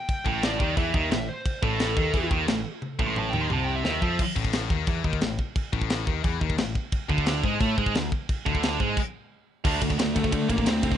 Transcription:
0.00 0.25 G5 loud
0.09 kick loud
0.09 china medium
0.25 0.57 A1 medium
0.25 0.60 A2 loud
0.25 0.43 G5 medium
0.25 kick loud
0.43 0.76 D5 medium
0.43 snare loud
0.43 china medium
0.60 0.76 D#2 loud
0.60 0.76 D#3 medium
0.60 kick loud
0.77 0.93 E2 medium
0.77 0.94 E3 loud
0.77 1.27 E5 medium
0.77 kick loud
0.77 china medium
0.94 1.10 D#2 loud
0.94 1.11 D#3 loud
0.94 kick loud
1.11 1.27 A1 medium
1.11 1.25 A2 medium
1.11 snare loud
1.11 china medium
1.29 1.62 C5 loud
1.46 kick loud
1.46 china medium
1.62 1.94 A1 medium
1.62 1.96 A2 loud
1.62 2.29 A4 loud
1.62 kick loud
1.80 snare loud
1.80 china medium
1.97 2.13 D#2 loud
1.97 2.13 D#3 loud
1.97 kick loud
2.14 2.30 E2 medium
2.14 2.31 E3 loud
2.14 kick loud
2.14 china medium
2.31 2.47 D#2 loud
2.31 2.48 D#3 loud
2.31 kick loud
2.48 2.64 A1 medium
2.48 2.62 A2 medium
2.48 snare loud
2.48 china medium
2.82 high tom medium
2.99 3.31 A1 loud
2.99 3.33 A2 loud
2.99 kick loud
3.07 3.17 C6 loud
3.16 3.30 A5 loud
3.16 mid tom medium
3.30 3.49 D#2 loud
3.30 3.40 G5 loud
3.30 mid tom medium
3.34 3.51 D#3 medium
3.41 3.51 C6 loud
3.50 3.82 C2 loud
3.50 3.84 C3 loud
3.50 3.64 A5 medium
3.50 mid tom medium
3.64 3.76 G5 loud
3.76 4.19 E5 loud
3.84 4.01 D#2 medium
3.84 4.01 D#3 loud
3.84 snare loud
4.01 4.18 F2 loud
4.01 4.18 F3 loud
4.01 kick medium
4.19 kick loud
4.19 crash loud
4.19 china medium
4.36 4.68 A1 loud
4.36 4.70 A2 loud
4.36 kick medium
4.45 kick medium
4.53 snare loud
4.53 china medium
4.70 4.86 D#2 loud
4.70 4.87 D#3 medium
4.70 kick medium
4.87 5.03 E2 medium
4.87 5.04 E3 loud
4.87 kick loud
4.87 china medium
5.04 5.20 D#2 loud
5.04 5.21 D#3 loud
5.04 kick loud
5.13 kick medium
5.21 5.37 A1 medium
5.21 5.35 A2 medium
5.21 snare loud
5.21 china medium
5.39 kick medium
5.56 kick loud
5.56 china medium
5.73 6.04 A1 medium
5.73 6.06 A2 loud
5.73 kick loud
5.81 kick medium
5.90 snare loud
5.90 china medium
6.07 6.23 D#2 medium
6.07 6.23 D#3 loud
6.07 kick loud
6.24 6.40 E2 loud
6.24 6.40 E3 loud
6.24 kick loud
6.24 china medium
6.41 6.57 D#2 loud
6.41 6.57 D#3 loud
6.41 kick medium
6.50 kick medium
6.58 6.74 A1 medium
6.58 6.72 A2 medium
6.58 snare loud
6.58 china medium
6.75 kick medium
6.92 kick loud
6.92 china medium
7.09 7.41 D2 loud
7.09 7.43 D3 loud
7.09 kick medium
7.18 kick medium
7.26 snare loud
7.26 china medium
7.43 7.59 G#2 loud
7.43 7.60 G#3 loud
7.43 kick medium
7.60 7.76 A2 loud
7.60 7.77 A3 loud
7.60 kick loud
7.60 china medium
7.78 7.93 G#2 loud
7.78 7.94 G#3 loud
7.78 kick loud
7.86 kick loud
7.95 8.10 D2 medium
7.95 8.08 D3 medium
7.95 snare loud
7.95 china medium
8.12 kick medium
8.29 kick loud
8.29 china medium
8.46 8.78 D2 loud
8.46 8.79 D3 medium
8.46 kick medium
8.55 kick medium
8.63 snare loud
8.63 china medium
8.80 8.96 G#2 loud
8.80 8.96 G#3 loud
8.80 kick medium
8.97 kick loud
8.97 crash loud
9.65 9.81 D2 loud
9.65 9.81 D3 medium
9.65 9.81 A3 medium
9.65 9.81 D4 loud
9.65 kick loud
9.65 crash loud
9.81 9.98 D2 loud
9.81 9.89 D3 medium
9.81 9.89 A3 medium
9.81 kick medium
9.81 ride medium
9.90 9.98 D3 medium
9.90 9.98 A3 medium
9.90 kick medium
9.99 10.15 D2 medium
9.99 10.14 D3 medium
9.99 10.14 A3 medium
9.99 snare loud
9.99 ride loud
10.15 10.32 D2 medium
10.15 10.23 D3 medium
10.15 10.22 A3 medium
10.15 10.49 A3 medium
10.15 kick medium
10.15 ride medium
10.23 10.31 D3 medium
10.23 10.31 A3 medium
10.23 kick loud
10.32 10.47 D3 medium
10.32 10.49 D3 loud
10.32 10.47 A3 medium
10.32 kick loud
10.32 ride loud
10.49 10.66 A1 loud
10.49 10.56 D3 medium
10.49 10.56 A3 medium
10.49 10.68 A#3 medium
10.49 kick loud
10.49 ride medium
10.57 10.64 D3 medium
10.57 10.65 A3 medium
10.57 kick loud
10.66 10.82 D2 medium
10.66 10.81 D3 medium
10.66 10.81 A3 medium
10.66 10.97 C4 loud
10.66 snare loud
10.66 ride loud
10.82 10.97 C2 loud
10.82 10.90 D3 medium
10.82 10.89 A3 medium
10.82 kick loud
10.82 ride medium
10.90 10.97 D3 medium
10.90 10.97 A3 medium
10.90 kick medium

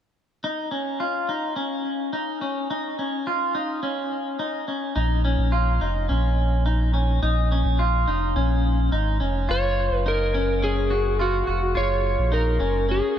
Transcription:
0.44 0.71 D#4 medium
0.71 1.00 C#4 medium
1.00 1.29 F4 medium
1.29 1.56 D#4 medium
1.56 2.13 C#4 medium
2.13 2.41 D#4 medium
2.41 2.70 C#4 medium
2.70 2.98 D#4 medium
2.99 3.27 C#4 medium
3.27 3.55 F4 medium
3.55 3.82 D#4 medium
3.83 4.39 C#4 medium
4.39 4.67 D#4 medium
4.68 4.95 C#4 medium
4.96 5.37 A#1 medium
4.96 5.24 D#4 medium
5.25 5.53 C#4 medium
5.38 5.79 A#1 medium
5.52 5.81 F4 medium
5.81 6.09 F1 medium
5.81 6.09 D#4 medium
6.09 7.19 A#1 loud
6.09 6.65 C#4 medium
6.66 6.93 D#4 medium
6.94 7.22 C#4 medium
7.23 7.63 A#1 loud
7.23 7.51 D#4 medium
7.52 7.80 C#4 medium
7.65 8.06 A#1 medium
7.79 8.08 F4 medium
8.08 8.35 F1 medium
8.08 8.36 D#4 medium
8.36 8.90 A#1 loud
8.36 8.92 C#4 medium
8.92 9.20 G#1 medium
8.92 9.20 D#4 medium
9.20 9.48 F1 medium
9.20 9.49 C#4 medium
9.49 9.90 F#1 medium
9.49 10.06 F4 medium
9.49 9.96 C#5 medium
9.91 11.43 F#1 medium
9.96 10.09 B4 medium
10.06 10.34 D#4 medium
10.06 10.65 A#4 medium
10.34 10.61 C#4 medium
10.62 10.91 C#4 medium
10.62 11.22 G#4 medium
10.90 11.19 F#4 medium
11.19 11.47 F4 medium
11.19 11.60 F#4 medium
11.47 11.75 F1 medium
11.47 11.75 F#4 medium
11.75 12.17 F#1 loud
11.75 12.32 F4 medium
11.75 12.35 C#5 medium
12.19 12.59 A#1 medium
12.32 12.59 D#4 medium
12.32 12.91 A#4 medium
12.60 13.01 F#1 loud
12.60 12.87 C#4 medium
12.89 13.17 C#4 medium
12.89 13.19 G#4 medium

